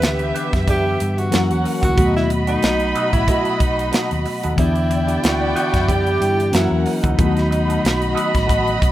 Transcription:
Already playing: tine electric piano D3 E3 B3 D4 G4, violin section B3 G4 E5, tenor saxophone B4
0.02 fingered electric bass D2, snare, closed hi-hat
0.19 muted clean electric guitar stroke, closed hi-hat
0.35 clean electric guitar B3 D4 G4, closed hi-hat
0.53 fingered electric bass F#2, muted clean electric guitar stroke, kick, snare, closed hi-hat
0.68 clean electric guitar B3 D4 G4, tenor saxophone G4, kick, closed hi-hat
1.00 fingered electric bass G2, muted clean electric guitar stroke, closed hi-hat
1.18 tenor saxophone F#4, muted clean electric guitar stroke, closed hi-hat
1.31 fingered electric bass F#2, tine electric piano E3 F#3 A#3 C#4 F#4, clean electric guitar A#3 E4 F#4, violin section C#4 A#4 F#5, snare, closed hi-hat
1.51 fingered electric bass E2, tenor saxophone F#4, closed hi-hat
1.64 muted clean electric guitar stroke, open hi-hat
1.81 fingered electric bass D2, clean electric guitar A#3 E4 F#4, tenor saxophone F#4, kick, closed hi-hat
1.95 fingered electric bass D#2, tine electric piano B2 F#3 A3 B3 F#4, clean electric guitar A3 D#4 F#4, violin section F#4 D#5 B5, kick, closed hi-hat
2.16 tenor saxophone E4, snare
2.30 muted clean electric guitar stroke, closed hi-hat
2.47 clean electric guitar A3 D#4 F#4, tenor saxophone D#4, closed hi-hat
2.63 fingered electric bass B1, snare, closed hi-hat
2.80 muted clean electric guitar stroke, closed hi-hat
2.95 clean electric guitar A3 D#4 F#4, closed hi-hat
3.13 fingered electric bass A1, tenor saxophone E4, kick, closed hi-hat
3.28 clean electric guitar A3 D#4 F#4, kick, closed hi-hat
3.45 muted fingered electric bass stroke, closed hi-hat
3.60 fingered electric bass B1, tenor saxophone D#4, kick, closed hi-hat
3.78 muted clean electric guitar stroke, closed hi-hat
3.92 clean electric guitar A3 D#4 F#4, muted fingered electric bass stroke, snare, closed hi-hat
4.11 fingered electric bass D#2, closed hi-hat
4.25 muted clean electric guitar stroke, open hi-hat
4.43 fingered electric bass D#2, clean electric guitar A3 D#4 F#4, closed hi-hat
4.56 fingered electric bass E2, tine electric piano D3 E3 B3 D4 E4, clean electric guitar B3 D4 G4, violin section E4 D5 G5, tenor saxophone E4, kick, closed hi-hat
4.75 muted clean electric guitar stroke, closed hi-hat
4.90 muted clean electric guitar stroke, closed hi-hat
5.08 clean electric guitar B3 D4 G4, closed hi-hat
5.24 fingered electric bass D2, tenor saxophone F#4, snare, closed hi-hat
5.41 muted clean electric guitar stroke
5.56 clean electric guitar B3 D4 G4, tenor saxophone F#4, closed hi-hat
5.74 fingered electric bass F#2, kick, snare, closed hi-hat
5.88 clean electric guitar B3 D4 G4, tenor saxophone G4, kick, closed hi-hat
6.07 closed hi-hat
6.21 fingered electric bass G2, muted clean electric guitar stroke, closed hi-hat
6.38 muted clean electric guitar stroke, closed hi-hat
6.52 fingered electric bass F#2, tine electric piano E3 F#3 A#3 C#4 F#4, clean electric guitar A#3 E4 F#4, violin section C#4 A#4 F#5, tenor saxophone E4, snare, closed hi-hat
6.71 fingered electric bass E2
6.86 tenor saxophone D#4, muted clean electric guitar stroke, open hi-hat
7.03 fingered electric bass D2, clean electric guitar A#3 E4 F#4, kick, closed hi-hat
7.17 fingered electric bass D#2, tine electric piano D#3 F#3 A3 B3 E4, clean electric guitar A3 D#4 F#4, violin section F#4 D#5 B5, kick, closed hi-hat
7.26 tine electric piano F#4
7.36 muted clean electric guitar stroke, snare, closed hi-hat
7.51 muted clean electric guitar stroke, closed hi-hat
7.68 clean electric guitar A3 D#4 F#4, closed hi-hat
7.84 fingered electric bass B1, snare, closed hi-hat
8.01 muted clean electric guitar stroke, closed hi-hat
8.15 clean electric guitar A3 D#4 F#4, closed hi-hat
8.33 fingered electric bass A1, muted clean electric guitar stroke, kick, snare, closed hi-hat
8.46 clean electric guitar A3 D#4 F#4, kick, closed hi-hat
8.67 closed hi-hat
8.80 fingered electric bass B1, muted clean electric guitar stroke, kick, closed hi-hat

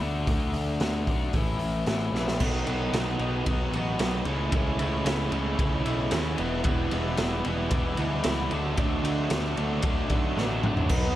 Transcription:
0.00 picked electric bass D2, overdriven electric guitar D3 A3 D4 F#4, open hi-hat
0.27 picked electric bass D2, overdriven electric guitar D3 A3 D4 F#4, kick, open hi-hat
0.53 picked electric bass D2, open hi-hat
0.80 picked electric bass D2, overdriven electric guitar D3 A3 D4 F#4, snare, open hi-hat
1.06 picked electric bass B1, overdriven electric guitar D3 A3 D4 F#4, kick, open hi-hat
1.33 picked electric bass A1, overdriven electric guitar A2 E3 A3 C#4 E4, kick, open hi-hat
1.59 picked electric bass A1, open hi-hat
1.86 picked electric bass A1, overdriven electric guitar A2 E3 A3 C#4 E4, snare, open hi-hat
2.12 picked electric bass A#1, overdriven electric guitar A2 E3 A3 C#4 E4, snare
2.28 snare
2.40 picked electric bass B1, overdriven electric guitar B2 D#3 F#3 B3 D#4 F#4, kick, crash
2.66 picked electric bass B1, overdriven electric guitar B2 D#3 F#3 B3 D#4 F#4, ride
2.93 picked electric bass B1, overdriven electric guitar B2 D#3 F#3 B3 D#4, snare, ride
2.97 overdriven electric guitar F#4
3.19 picked electric bass B1, overdriven electric guitar B2 D#3 F#3 B3 D#4 F#4, ride
3.45 picked electric bass B1, overdriven electric guitar B2 D#3 F#3 B3 D#4, kick, ride
3.50 overdriven electric guitar F#4
3.72 picked electric bass A1, overdriven electric guitar B2 D#3 F#3 B3 D#4, ride
3.76 overdriven electric guitar F#4
3.98 picked electric bass B1, overdriven electric guitar B2 D#3 F#3 B3 D#4 F#4, snare, ride
4.25 picked electric bass C#2, overdriven electric guitar C#3 E3 A3 C#4 E4, ride
4.51 picked electric bass C#2, overdriven electric guitar C#3 E3 A3 C#4 E4, kick, ride
4.78 picked electric bass C#2, overdriven electric guitar C#3 E3 A3 C#4 E4, ride
5.04 picked electric bass C#2, overdriven electric guitar C#3 E3 A3 C#4 E4, snare, ride
5.30 picked electric bass C#2, overdriven electric guitar C#3 E3 A3 C#4 E4, ride
5.58 picked electric bass C#2, overdriven electric guitar C#3 E3 A3 C#4 E4, kick, ride
5.84 picked electric bass B1, overdriven electric guitar C#3 E3 A3 C#4 E4, ride
6.11 picked electric bass D#2, overdriven electric guitar C#3 E3 A3 C#4 E4, snare, ride
6.37 picked electric bass E1, overdriven electric guitar E2 B2 E3 G3 B3 E4, ride
6.42 overdriven electric guitar E3 G3
6.63 picked electric bass E1, overdriven electric guitar E2 B2 E3 G3 B3 E4, kick, ride
6.90 picked electric bass E1, overdriven electric guitar E2 B2 E3 G3 B3 E4, ride
7.17 picked electric bass E1, overdriven electric guitar E2 B2 E3 G3 B3 E4, snare, ride
7.44 picked electric bass E1, overdriven electric guitar E2 B2 E3 G3 B3 E4, ride
7.71 picked electric bass E1, overdriven electric guitar E2 B2 E3 G3 B3 E4, kick, ride
7.97 picked electric bass D2, overdriven electric guitar E2 B2 E3 G3 B3 E4, ride
8.24 picked electric bass C#2, overdriven electric guitar E2 B2 E3 G3 B3 E4, snare, ride
8.50 picked electric bass D2, overdriven electric guitar D3 F#3 A3 D4 F#4, ride
8.77 picked electric bass D2, overdriven electric guitar D3 F#3 A3 D4 F#4, kick, ride
9.03 picked electric bass D2, overdriven electric guitar D3 F#3 A3 D4 F#4, ride
9.30 picked electric bass D2, overdriven electric guitar D3 F#3 A3 D4 F#4, snare, ride
9.56 picked electric bass D2, overdriven electric guitar D3 F#3 A3 D4 F#4, ride
9.82 picked electric bass D2, overdriven electric guitar D3 F#3 A3 D4 F#4, kick, ride
10.10 picked electric bass B1, overdriven electric guitar D3 F#3 A3 D4 F#4, kick, ride
10.36 picked electric bass A1, overdriven electric guitar D3 F#3 A3 D4 F#4, snare
10.63 overdriven electric guitar D3 F#3 A3 D4 F#4, mid tom
10.77 floor tom
10.88 picked electric bass B1, overdriven electric guitar B2 F#3 B3 D#4 F#4, analog synth pad D#4 B4 F#5 D#6, kick, crash, tambourine

